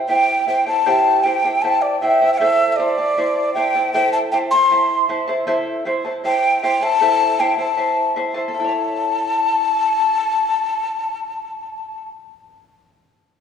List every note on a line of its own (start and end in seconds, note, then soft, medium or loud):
0.09 0.46 E4 medium
0.09 0.47 C5 medium
0.09 0.45 E5 medium
0.09 0.45 G5 medium
0.09 0.47 G5 medium
0.47 0.67 E4 medium
0.47 0.66 C5 medium
0.47 0.67 E5 medium
0.47 0.65 G5 medium
0.47 0.66 G5 medium
0.66 0.85 E4 medium
0.66 0.85 C5 medium
0.66 0.86 G5 medium
0.66 1.25 A5 loud
0.86 1.24 E4 medium
0.86 1.25 G4 medium
0.86 1.24 C5 loud
0.86 1.23 E5 medium
0.86 1.25 G5 medium
1.23 1.44 E4 medium
1.23 1.44 C5 medium
1.23 1.44 E5 medium
1.23 1.63 G5 medium
1.23 1.43 G5 medium
1.44 1.63 E4 soft
1.44 1.63 C5 soft
1.44 1.64 G5 medium
1.62 2.01 E4 medium
1.62 2.01 C5 medium
1.62 2.01 E5 medium
1.62 2.02 G5 medium
1.62 1.83 A5 loud
1.81 1.99 D5 medium
2.00 2.21 E4 medium
2.00 2.20 C5 medium
2.00 2.30 E5 medium
2.00 2.21 E5 medium
2.00 2.20 G5 medium
2.21 2.39 E4 soft
2.21 2.40 C5 medium
2.21 2.40 G5 medium
2.33 2.39 G5 medium
2.38 2.78 E4 medium
2.38 2.78 A4 medium
2.38 2.78 C5 medium
2.38 2.72 E5 loud
2.38 2.77 E5 medium
2.38 2.79 A5 medium
2.72 3.53 D5 medium
2.72 2.78 E5 medium
2.78 2.98 E4 medium
2.78 2.97 C5 medium
2.78 2.98 E5 medium
2.78 2.97 A5 medium
2.98 3.17 E4 soft
2.98 3.17 C5 soft
2.98 3.17 A5 medium
3.18 3.55 E4 medium
3.18 3.55 C5 medium
3.18 3.54 E5 medium
3.18 3.56 A5 medium
3.54 3.75 E4 medium
3.54 3.74 C5 medium
3.54 3.75 E5 medium
3.54 3.91 G5 loud
3.54 3.73 A5 medium
3.75 3.93 E4 soft
3.75 3.94 C5 medium
3.75 3.93 A5 medium
3.93 4.32 E4 medium
3.93 4.32 A4 medium
3.93 4.32 C5 medium
3.93 4.31 E5 medium
3.93 4.11 G5 loud
3.93 4.32 A5 medium
4.12 4.18 A5 medium
4.31 4.52 E4 medium
4.31 4.52 C5 medium
4.31 4.52 E5 medium
4.31 4.37 G5 medium
4.31 4.51 A5 medium
4.51 4.70 E4 soft
4.51 4.71 C5 soft
4.51 4.71 A5 medium
4.51 5.05 C6 loud
4.71 5.08 E4 medium
4.71 5.09 C5 medium
4.71 5.08 E5 medium
4.71 5.09 A5 medium
5.09 5.28 E4 medium
5.09 5.27 C5 medium
5.09 5.28 E5 medium
5.09 5.26 A5 medium
5.27 5.46 E4 medium
5.27 5.46 C5 medium
5.27 5.46 A5 medium
5.47 5.85 E4 loud
5.47 5.85 A4 medium
5.47 5.85 C5 medium
5.47 5.84 E5 medium
5.47 5.86 A5 loud
5.85 6.05 E4 medium
5.85 6.04 C5 medium
5.85 6.05 E5 medium
5.85 6.04 A5 medium
6.05 6.24 E4 soft
6.05 6.24 C5 soft
6.05 6.24 A5 medium
6.24 6.62 E4 medium
6.24 6.62 C5 medium
6.24 6.61 E5 medium
6.24 6.61 G5 loud
6.24 6.62 A5 medium
6.63 6.81 E4 medium
6.63 6.81 C5 medium
6.63 6.82 E5 medium
6.63 6.84 G5 loud
6.63 6.80 A5 medium
6.81 7.01 E4 soft
6.81 7.00 C5 soft
6.81 7.01 A5 medium
6.81 7.41 A5 loud
7.01 7.39 E4 medium
7.01 7.39 A4 medium
7.01 7.39 C5 medium
7.01 7.38 E5 medium
7.01 7.39 A5 medium
7.39 7.58 E4 medium
7.39 7.57 C5 medium
7.39 7.59 E5 medium
7.39 7.58 G5 medium
7.39 7.57 A5 medium
7.58 7.76 E4 soft
7.58 7.77 C5 soft
7.58 7.77 A5 medium
7.58 8.12 A5 medium
7.77 8.15 E4 medium
7.77 8.15 C5 medium
7.77 8.14 E5 medium
7.77 8.16 A5 medium
8.16 8.34 E4 medium
8.16 8.34 C5 medium
8.16 8.35 E5 medium
8.16 8.33 A5 medium
8.34 8.55 E4 medium
8.34 8.54 C5 medium
8.34 8.54 A5 medium
8.48 12.06 A4 medium
8.54 12.12 E5 medium
8.54 12.08 A5 loud
8.59 12.17 E4 medium
8.64 12.22 C#5 medium
8.69 12.27 A5 medium